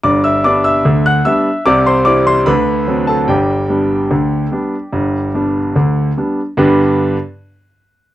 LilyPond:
<<
  \new Staff \with { instrumentName = "Grand piano" } { \time 2/4 \key g \major \tempo 4 = 74 <d'' d'''>16 <e'' e'''>16 <d'' d'''>16 <e'' e'''>8 <fis'' fis'''>16 <e'' e'''>8 | <d'' d'''>16 <c'' c'''>16 <d'' d'''>16 <c'' c'''>16 <b' b''>8. <a' a''>16 | <g' d'' g''>2~ | <g' d'' g''>4. r8 |
<g, d b d' g' b'>8 r4. | }
  \new Staff \with { instrumentName = "Grand piano" } { \clef bass \time 2/4 \key g \major <g,, g,>8 <g b d'>8 <d, d>8 <g b d'>8 | <c, c>8 <g c' e'>8 <d, d>8 <fis c' d'>8 | <g,, g,>8 <g b d'>8 <d, d>8 <g b d'>8 | <g,, g,>8 <g b d'>8 <d, d>8 <g b d'>8 |
r2 | }
>>